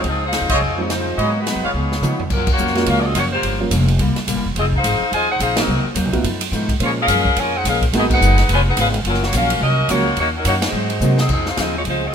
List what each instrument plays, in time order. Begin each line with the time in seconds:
0.04 upright bass C#2, steel-string acoustic guitar C#3 F3 C4 D#4, kick, ride
0.08 saxophone section F3 C4 D#4 G#4
0.24 saxophone section D#4 G#4 C5 F5
0.33 steel-string acoustic guitar C#3 F3 C4 D#4, snare, hi-hat pedal, ride
0.41 upright bass D#2
0.49 upright bass C2, saxophone section C4 F4 G#4 D#5, trumpet section F4 C5 C#5 D#5, kick, ride
0.61 upright bass F2, steel-string acoustic guitar C#3 F3 C4 D#4
0.78 grand piano F3 G#3 C4 D#4, saxophone section G#3 D#4 F4 C#5
0.90 steel-string acoustic guitar C#3 F3 C4 D#4, saxophone section G#3 D#4 F4 C5, snare, hi-hat pedal, ride
1.18 upright bass G#2, steel-string acoustic guitar G#2 F#3 B3 D#4, saxophone section A#3 D#4 F#4 C#5, trumpet section F#4 G#4 B4 D#5, kick, ride
1.38 saxophone section G#3 D#4 F#4 B4
1.47 steel-string acoustic guitar G#2 F#3 B3 D#4, saxophone section G#3 D#4 F#4 B4, snare, hi-hat pedal, ride
1.55 upright bass F#2
1.63 upright bass D#2, saxophone section B3 F4 G#4 C#5, trumpet section F4 B4 C#5 F5
1.73 upright bass C#2, steel-string acoustic guitar C#3 F3 B3 D#4
1.92 snare
2.01 upright bass C#3, steel-string acoustic guitar C#3 F3 B3 D#4, grand piano F3 G#3 B3 D#4, hi-hat pedal, mid tom
2.20 floor tom
2.30 upright bass F#2, steel-string acoustic guitar F#2 F3 A#3 C#4, saxophone section F#3 C#4 F4 A#4, kick, crash
2.47 saxophone section A#3 F4 F#4, kick, crash
2.51 saxophone section C#5
2.58 upright bass F2, steel-string acoustic guitar F#2 F3 A#3 C#4, hi-hat pedal
2.67 snare
2.75 grand piano F#3 G#3 A#3 C#4 F4, snare, ride
2.86 upright bass C#2, steel-string acoustic guitar F#2 F3 A#3 C#4, saxophone section C#4 F#4 A#4 F5, kick, ride
3.00 saxophone section C4 G#4 D5
3.04 saxophone section F4 D#5
3.14 upright bass F#1, steel-string acoustic guitar F#2 F3 A#3 C#4, saxophone section A#3 F4 F#4 C#5, kick, hi-hat pedal, ride
3.32 saxophone section A#3 F4 G4 C5
3.42 upright bass G1, steel-string acoustic guitar G2 F3 A#3 C#4, kick, ride
3.60 grand piano F3 G3 A#3 C#4 F4
3.71 upright bass F1, steel-string acoustic guitar G2 F3 A#3 C#4, kick, hi-hat pedal, ride
3.88 ride
3.99 upright bass C2, steel-string acoustic guitar C3 G3 A#3 E4, kick, ride
4.15 muted upright bass stroke, snare, ride
4.27 upright bass A#1, steel-string acoustic guitar C3 G3 A#3 E4, kick, hi-hat pedal, ride
4.35 upright bass G1
4.45 upright bass E1
4.55 upright bass F1, steel-string acoustic guitar F3 C4 D#4 G#4, saxophone section C4 F4 G#4 D#5, kick, ride
4.73 saxophone section D#4 G#4 C5 F5, kick
4.83 upright bass G#1, steel-string acoustic guitar F3 C4 D#4 G#4, kick, hi-hat pedal, ride
5.00 muted upright bass stroke
5.11 upright bass D#2, steel-string acoustic guitar F3 C4 D#4 G#4, saxophone section F4 C5 D#5 G#5, kick, ride
5.29 saxophone section D#4 G#4 C5 F#5
5.39 upright bass A#1, steel-string acoustic guitar F3 C4 D#4 G#4, saxophone section D#4 G#4 C5 F5, kick, hi-hat pedal, ride
5.56 grand piano F#3 A#3 C4 D#4 F#4, saxophone section C4 F#4 A#4 D#5, snare, ride
5.67 upright bass C2, steel-string acoustic guitar C3 F#3 A#3 D#4
5.84 muted upright bass stroke
5.94 upright bass D#2, steel-string acoustic guitar C3 F#3 A#3 D#4, kick, hi-hat pedal, ride
6.05 upright bass C2
6.12 upright bass A#1, grand piano F#3 A3 B3 D#4 F4, kick, ride
6.23 upright bass F#2, steel-string acoustic guitar B2 F3 A3 D#4, kick, ride
6.41 ride
6.52 upright bass G#2, steel-string acoustic guitar B2 F3 A3 D#4, kick, hi-hat pedal
6.69 kick, ride
6.80 upright bass A#2, steel-string acoustic guitar A#2 F3 G#3 C#4, grand piano G#3 A#3 C#4 F4 C5, saxophone section A#3 F4 C#5, ride
6.84 saxophone section G#4
7.00 saxophone section C#4 G#4 A#4 F5
7.07 upright bass F#2, steel-string acoustic guitar A#2 F3 G#3 C#4, kick, hi-hat pedal, ride
7.25 kick
7.36 upright bass F2, steel-string acoustic guitar A#2 F3 G#3 C#4, saxophone section F4 A#4 C#5 G#5, kick, ride
7.56 saxophone section D#4 G#4 C5 F#5
7.64 upright bass A#1, steel-string acoustic guitar A#2 F3 G#3 C#4, kick, hi-hat pedal, ride
7.68 saxophone section C#4 G#4 A#4 F5
7.82 kick, ride
7.93 upright bass G#1, steel-string acoustic guitar G#2 F#3 B3 D#4, grand piano G#3 A#3 B3 D#4 F#4, saxophone section D#5, kick, snare, ride
7.97 saxophone section B3 F#4 G#4
8.10 saxophone section D#4 G#4 B4 F#5, kick, crash
8.21 upright bass F#1, steel-string acoustic guitar G#2 F#3 B3 D#4, hi-hat pedal
8.38 snare, ride
8.49 upright bass F1, steel-string acoustic guitar C#3 G#3 B3 F4, saxophone section G#5, kick, ride
8.53 saxophone section F4 B4 C#5
8.68 saxophone section D#4 G#4 B4 F#5
8.76 upright bass G#1, steel-string acoustic guitar C#3 G#3 B3 F4, saxophone section C#4 G#4 B4 F5, kick, hi-hat pedal, ride
8.94 ride
9.04 upright bass F#1, steel-string acoustic guitar F#2 F3 A#3 C#4, saxophone section F#3 C#4 F4 A#4, kick, ride
9.14 snare
9.23 saxophone section A#3 F4 F#4 C#5, snare
9.32 upright bass A#1, steel-string acoustic guitar F#2 F3 A#3 C#4, saxophone section C#4 F#4 A#4 F5, kick, hi-hat pedal, ride
9.50 ride
9.60 upright bass C2, steel-string acoustic guitar F#2 F3 A#3 C#4, saxophone section C#4 F#4 A#4 D#5, kick
9.88 upright bass C#2, steel-string acoustic guitar F#2 F3 A#3 C#4, grand piano G#3 A#3 C#4 F4 F#4, saxophone section A#3 F4 F#4 C#5, kick, hi-hat pedal, ride
10.16 upright bass D#2, steel-string acoustic guitar D#3 A#3 C#4 F#4, saxophone section A#3 D#4 F#4 C#5, kick, ride
10.36 saxophone section F#3 C#4 D#4 A#4
10.45 upright bass F#2, steel-string acoustic guitar D#3 A#3 C#4 F#4, saxophone section A#3 D#4 F#4 C#5, kick, hi-hat pedal, ride
10.62 saxophone section G#3 D#4 F#4 C5, snare, ride
10.72 upright bass G#2, steel-string acoustic guitar G#2 F#3 C4 D#4
10.90 ride
11.00 steel-string acoustic guitar G#2 F#3 C4 D#4, upright bass C3, grand piano G#3 A#3 C4 D#4 F#4, hi-hat pedal
11.18 saxophone section F#3 C4 D#4 G#4, snare
11.28 upright bass F2, steel-string acoustic guitar C#3 F3 C4 D#4, saxophone section F3 C4 D#4 G#4, kick, crash
11.46 saxophone section D#4 G#4 C5 F5, snare
11.57 upright bass D#2, steel-string acoustic guitar C#3 F3 C4 D#4, saxophone section C4 F4 G#4 D#5, kick, snare, hi-hat pedal, ride
11.76 saxophone section G#3 D#4 F4 C#5
11.84 upright bass C#2, steel-string acoustic guitar C#3 F3 C4 D#4, saxophone section G#3 D#4 F4 C5, kick, ride
12.06 saxophone section C4 F4 G#4 D#5